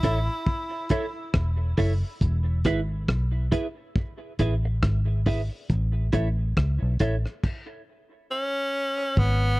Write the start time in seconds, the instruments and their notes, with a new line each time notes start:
Already playing: tenor saxophone E4
0.03 fingered electric bass A1, clean electric guitar E4 A4 C#5 E5, kick, closed hi-hat
0.46 kick
0.89 clean electric guitar E4 A4 C#5 E5, kick, closed hi-hat
1.34 fingered electric bass E1, kick, cross-stick
1.77 fingered electric bass F#1, clean electric guitar E4 A4 C#5 E5, kick, open hi-hat
2.21 fingered electric bass E1, kick, hi-hat pedal
2.64 fingered electric bass G#1, clean electric guitar E4 G#4 B4 E5, kick, cross-stick, closed hi-hat
3.08 fingered electric bass B1, kick, cross-stick
3.52 clean electric guitar E4 G#4 B4 E5, kick, closed hi-hat
3.96 kick
4.39 fingered electric bass A1, clean electric guitar E4 G#4 B4 E5, kick, closed hi-hat
4.65 muted clean electric guitar stroke
4.83 fingered electric bass G#1, kick, cross-stick
5.26 clean electric guitar E4 G#4 B4 E5, kick, open hi-hat
5.69 fingered electric bass A1, kick, hi-hat pedal
6.12 fingered electric bass A1, clean electric guitar E4 A4 C#5 E5, kick, closed hi-hat
6.57 fingered electric bass C#2, kick, cross-stick
6.82 fingered electric bass B1
6.99 fingered electric bass A1, clean electric guitar E4 A4 C#5 E5, kick, closed hi-hat
7.26 cross-stick
7.43 kick, crash
8.31 tenor saxophone C#4
9.17 fingered electric bass G#1, tenor saxophone B3, kick